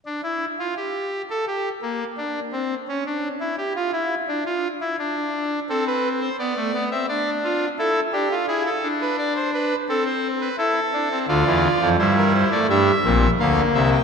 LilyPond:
<<
  \new Staff \with { instrumentName = "Pipe organ" } { \time 4/4 \key d \minor \tempo 4 = 85 << { d'16 e'8 f'16 g'8. a'16 g'8 bes8 d'8 c'8 | cis'16 d'8 e'16 g'16 f'16 e'8 d'16 f'8 e'16 d'4 | a'16 b'8 c''16 d''8. e''16 d''8 f'8 a'8 g'8 | gis'16 a'8 b'16 d''16 c''16 b'8 a'16 c''8 b'16 a'4 |
d''4 c''16 bes'16 c''16 d''16 e''4 f''8 e''16 g''16 | } \\ { r1 | r1 | c'4 b16 a16 b16 c'16 d'4 e'8 d'16 f'16 | e'8 d'4. c'4 e'8 d'16 c'16 |
f'4 e'4 d'8 c'8 bes4 | } >> }
  \new Staff \with { instrumentName = "Pipe organ" } { \clef bass \time 4/4 \key d \minor r1 | r1 | r1 | r1 |
<d, d>16 <e, e>8 <f, f>16 <g, g>8. a16 <g, g>8 <bes,, bes,>8 <d, d>8 <c, c>8 | }
>>